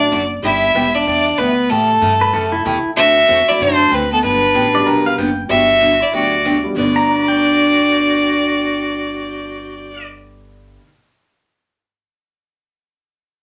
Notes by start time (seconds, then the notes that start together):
Already playing: A1 D4 D5
0.11 F#1 D3 F#3 A3 E4 F#4
0.43 G1 G3 B3 D4 E4 G4 E5
0.75 E1 G3 B3 E4 G4
0.95 D4 D5
1.06 E2 G3 B3 E4 G4
1.38 D2 G3 B3 E4 G4 B4
1.69 A2 C#3 E3 A3 C#4 G4 A4
2.01 G2 C#3 E3 A3 C#4 G4
2.21 B4
2.33 F#2 C#3 E3 A3 C#4 G4 A4
2.52 E4
2.65 E2 C#3 E3 A3 C#4 E4 G4
2.85 muted upright bass stroke
2.96 D2 D3 A3 C4 F#4 A4 E5
3.28 E2 D3 A3 C4 F#4 A4
3.47 F#3 A3 C4 D4 E4 F#4 D5, muted upright bass stroke
3.60 F#2 D3 A3 C4 D4 F#4 A4 C5
3.91 D2 D3 A3 C4 F#4 A4 B4
4.12 B3 A4
4.22 G1 D3 F#3 B3 D4 G4 B4
4.54 A1 D3 F#3 B3 D4 G4
4.73 G3 B3 D4 F#4 G4 D5
4.85 B1 D3 F#3 B3 D4 G4 A#4
5.06 F5
5.18 F#1 D3 F#3 B3 D4 G4 G5
5.49 G1 D3 F#3 G3 B3 D4 F#4 G4 E5
5.81 D3 F#3 B3 D4 G4
6.01 E4 D5
6.13 D2 D3 F#3 B3 D4 F#4 G4 D5
6.45 D3 F#3 B3 D4 G4
6.64 G3 B3 D4 F#4 G4
6.71 G2 D3
6.75 G1 G2 D3 A3 B3 D4 F#4 D5
6.83 B4
6.96 A#5
7.09 D5
7.16 F#5
7.24 A5
7.28 G5
7.33 D6
7.43 F#6
7.54 A6
7.66 D7